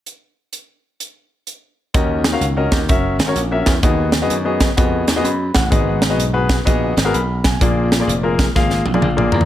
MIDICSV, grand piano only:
0, 0, Header, 1, 2, 480
1, 0, Start_track
1, 0, Key_signature, -6, "minor"
1, 0, Tempo, 472069
1, 55, Time_signature, 4, 2, 24, 8
1, 9611, End_track
2, 0, Start_track
2, 0, Title_t, "Grand piano"
2, 0, Program_c, 0, 0
2, 1973, Note_on_c, 0, 66, 60
2, 1975, Note_on_c, 0, 61, 72
2, 1976, Note_on_c, 0, 51, 58
2, 1977, Note_on_c, 0, 70, 66
2, 1977, Note_on_c, 0, 75, 76
2, 2244, Note_off_c, 0, 66, 0
2, 2245, Note_off_c, 0, 61, 0
2, 2246, Note_off_c, 0, 70, 0
2, 2246, Note_off_c, 0, 75, 0
2, 2363, Note_on_c, 0, 61, 69
2, 2368, Note_on_c, 0, 70, 63
2, 2369, Note_on_c, 0, 66, 71
2, 2374, Note_on_c, 0, 77, 79
2, 2479, Note_off_c, 0, 61, 0
2, 2482, Note_off_c, 0, 66, 0
2, 2482, Note_off_c, 0, 70, 0
2, 2485, Note_off_c, 0, 77, 0
2, 2612, Note_on_c, 0, 61, 72
2, 2612, Note_on_c, 0, 66, 64
2, 2615, Note_on_c, 0, 70, 72
2, 2617, Note_on_c, 0, 75, 76
2, 2726, Note_off_c, 0, 51, 0
2, 2830, Note_off_c, 0, 61, 0
2, 2831, Note_off_c, 0, 66, 0
2, 2832, Note_off_c, 0, 70, 0
2, 2833, Note_off_c, 0, 75, 0
2, 2939, Note_on_c, 0, 61, 78
2, 2940, Note_on_c, 0, 66, 67
2, 2941, Note_on_c, 0, 76, 83
2, 2944, Note_on_c, 0, 70, 65
2, 3207, Note_off_c, 0, 61, 0
2, 3208, Note_off_c, 0, 66, 0
2, 3208, Note_off_c, 0, 76, 0
2, 3210, Note_off_c, 0, 70, 0
2, 3325, Note_on_c, 0, 61, 73
2, 3328, Note_on_c, 0, 66, 64
2, 3329, Note_on_c, 0, 70, 67
2, 3336, Note_on_c, 0, 73, 82
2, 3440, Note_off_c, 0, 61, 0
2, 3442, Note_off_c, 0, 66, 0
2, 3442, Note_off_c, 0, 70, 0
2, 3446, Note_off_c, 0, 73, 0
2, 3574, Note_on_c, 0, 61, 72
2, 3575, Note_on_c, 0, 66, 62
2, 3577, Note_on_c, 0, 70, 64
2, 3581, Note_on_c, 0, 76, 79
2, 3792, Note_off_c, 0, 61, 0
2, 3792, Note_off_c, 0, 66, 0
2, 3793, Note_off_c, 0, 70, 0
2, 3795, Note_off_c, 0, 76, 0
2, 3895, Note_on_c, 0, 66, 61
2, 3896, Note_on_c, 0, 51, 58
2, 3896, Note_on_c, 0, 59, 73
2, 3897, Note_on_c, 0, 75, 78
2, 3898, Note_on_c, 0, 68, 63
2, 4166, Note_off_c, 0, 59, 0
2, 4166, Note_off_c, 0, 66, 0
2, 4167, Note_off_c, 0, 68, 0
2, 4167, Note_off_c, 0, 75, 0
2, 4289, Note_on_c, 0, 59, 75
2, 4289, Note_on_c, 0, 66, 65
2, 4295, Note_on_c, 0, 75, 83
2, 4297, Note_on_c, 0, 68, 72
2, 4402, Note_off_c, 0, 66, 0
2, 4403, Note_off_c, 0, 59, 0
2, 4406, Note_off_c, 0, 68, 0
2, 4406, Note_off_c, 0, 75, 0
2, 4524, Note_on_c, 0, 59, 71
2, 4525, Note_on_c, 0, 66, 64
2, 4530, Note_on_c, 0, 68, 66
2, 4530, Note_on_c, 0, 75, 79
2, 4645, Note_off_c, 0, 51, 0
2, 4747, Note_off_c, 0, 59, 0
2, 4747, Note_off_c, 0, 66, 0
2, 4750, Note_off_c, 0, 68, 0
2, 4750, Note_off_c, 0, 75, 0
2, 4848, Note_on_c, 0, 59, 75
2, 4851, Note_on_c, 0, 66, 64
2, 4855, Note_on_c, 0, 68, 65
2, 4857, Note_on_c, 0, 75, 81
2, 5122, Note_off_c, 0, 59, 0
2, 5124, Note_off_c, 0, 66, 0
2, 5125, Note_off_c, 0, 68, 0
2, 5126, Note_off_c, 0, 75, 0
2, 5249, Note_on_c, 0, 59, 72
2, 5250, Note_on_c, 0, 66, 71
2, 5250, Note_on_c, 0, 68, 72
2, 5253, Note_on_c, 0, 75, 86
2, 5337, Note_on_c, 0, 83, 58
2, 5362, Note_off_c, 0, 59, 0
2, 5363, Note_off_c, 0, 66, 0
2, 5363, Note_off_c, 0, 68, 0
2, 5364, Note_off_c, 0, 75, 0
2, 5631, Note_off_c, 0, 83, 0
2, 5637, Note_on_c, 0, 78, 61
2, 5802, Note_on_c, 0, 59, 71
2, 5806, Note_on_c, 0, 68, 69
2, 5810, Note_on_c, 0, 44, 63
2, 5810, Note_on_c, 0, 66, 67
2, 5812, Note_on_c, 0, 75, 76
2, 6079, Note_off_c, 0, 59, 0
2, 6081, Note_off_c, 0, 68, 0
2, 6083, Note_off_c, 0, 66, 0
2, 6084, Note_off_c, 0, 75, 0
2, 6098, Note_off_c, 0, 78, 0
2, 6200, Note_on_c, 0, 59, 76
2, 6201, Note_on_c, 0, 68, 67
2, 6203, Note_on_c, 0, 75, 85
2, 6205, Note_on_c, 0, 66, 69
2, 6317, Note_off_c, 0, 59, 0
2, 6318, Note_off_c, 0, 68, 0
2, 6319, Note_off_c, 0, 75, 0
2, 6320, Note_off_c, 0, 66, 0
2, 6441, Note_on_c, 0, 59, 69
2, 6443, Note_on_c, 0, 68, 68
2, 6444, Note_on_c, 0, 66, 71
2, 6446, Note_on_c, 0, 71, 89
2, 6561, Note_off_c, 0, 44, 0
2, 6665, Note_off_c, 0, 59, 0
2, 6666, Note_off_c, 0, 66, 0
2, 6666, Note_off_c, 0, 68, 0
2, 6667, Note_off_c, 0, 71, 0
2, 6765, Note_on_c, 0, 59, 81
2, 6765, Note_on_c, 0, 66, 70
2, 6770, Note_on_c, 0, 68, 69
2, 6772, Note_on_c, 0, 75, 89
2, 7039, Note_off_c, 0, 66, 0
2, 7040, Note_off_c, 0, 59, 0
2, 7042, Note_off_c, 0, 68, 0
2, 7043, Note_off_c, 0, 75, 0
2, 7165, Note_on_c, 0, 66, 68
2, 7166, Note_on_c, 0, 59, 74
2, 7170, Note_on_c, 0, 68, 75
2, 7173, Note_on_c, 0, 70, 82
2, 7259, Note_on_c, 0, 83, 54
2, 7280, Note_off_c, 0, 59, 0
2, 7280, Note_off_c, 0, 66, 0
2, 7282, Note_off_c, 0, 68, 0
2, 7284, Note_off_c, 0, 70, 0
2, 7550, Note_off_c, 0, 83, 0
2, 7574, Note_on_c, 0, 80, 54
2, 7739, Note_on_c, 0, 58, 72
2, 7742, Note_on_c, 0, 65, 65
2, 7745, Note_on_c, 0, 46, 59
2, 7746, Note_on_c, 0, 74, 80
2, 7748, Note_on_c, 0, 68, 67
2, 8006, Note_off_c, 0, 58, 0
2, 8008, Note_off_c, 0, 65, 0
2, 8009, Note_off_c, 0, 74, 0
2, 8010, Note_off_c, 0, 68, 0
2, 8026, Note_off_c, 0, 80, 0
2, 8133, Note_on_c, 0, 58, 69
2, 8140, Note_on_c, 0, 65, 67
2, 8140, Note_on_c, 0, 68, 65
2, 8142, Note_on_c, 0, 74, 76
2, 8243, Note_off_c, 0, 58, 0
2, 8246, Note_off_c, 0, 68, 0
2, 8247, Note_off_c, 0, 65, 0
2, 8247, Note_off_c, 0, 74, 0
2, 8371, Note_on_c, 0, 58, 71
2, 8375, Note_on_c, 0, 65, 63
2, 8377, Note_on_c, 0, 68, 65
2, 8377, Note_on_c, 0, 70, 76
2, 8488, Note_off_c, 0, 46, 0
2, 8589, Note_off_c, 0, 58, 0
2, 8590, Note_off_c, 0, 65, 0
2, 8591, Note_off_c, 0, 68, 0
2, 8591, Note_off_c, 0, 70, 0
2, 8699, Note_on_c, 0, 58, 78
2, 8704, Note_on_c, 0, 65, 65
2, 8704, Note_on_c, 0, 68, 65
2, 8706, Note_on_c, 0, 77, 79
2, 8965, Note_off_c, 0, 58, 0
2, 8968, Note_off_c, 0, 65, 0
2, 8968, Note_off_c, 0, 68, 0
2, 8969, Note_off_c, 0, 77, 0
2, 9090, Note_on_c, 0, 65, 65
2, 9091, Note_on_c, 0, 58, 79
2, 9092, Note_on_c, 0, 68, 68
2, 9095, Note_on_c, 0, 74, 77
2, 9173, Note_on_c, 0, 77, 60
2, 9201, Note_off_c, 0, 58, 0
2, 9201, Note_off_c, 0, 65, 0
2, 9202, Note_off_c, 0, 68, 0
2, 9203, Note_off_c, 0, 74, 0
2, 9322, Note_on_c, 0, 58, 76
2, 9323, Note_on_c, 0, 65, 66
2, 9326, Note_on_c, 0, 68, 66
2, 9326, Note_on_c, 0, 74, 85
2, 9460, Note_off_c, 0, 77, 0
2, 9478, Note_on_c, 0, 82, 59
2, 9543, Note_off_c, 0, 58, 0
2, 9544, Note_off_c, 0, 65, 0
2, 9545, Note_off_c, 0, 68, 0
2, 9545, Note_off_c, 0, 74, 0
2, 9611, Note_off_c, 0, 82, 0
2, 9611, End_track
0, 0, End_of_file